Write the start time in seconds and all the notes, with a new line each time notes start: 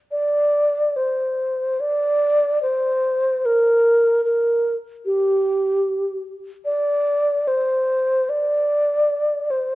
0.11 D5
0.96 C5
1.80 D5
2.62 C5
3.45 A#4
4.25 A#4
5.05 G4
6.65 D5
7.47 C5
8.29 D5
9.50 C5